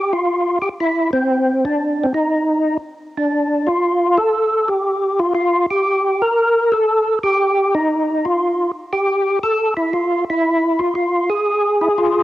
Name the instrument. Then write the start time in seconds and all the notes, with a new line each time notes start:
tonewheel organ
Already playing: G4
0.13 F4
0.62 G4
0.80 E4
1.13 C4
1.65 D4
2.04 C4
2.15 D#4
3.18 D4
3.67 F4
4.18 A4
4.68 G4
5.20 F4
5.35 F4
5.71 G4
6.22 A#4
6.72 A4
7.23 G4
7.74 D#4
8.25 F4
8.93 G4
9.43 A4
9.77 E4
9.93 F4
10.30 E4
10.79 F4
10.95 F4
11.30 G#4
11.81 E4
11.98 F4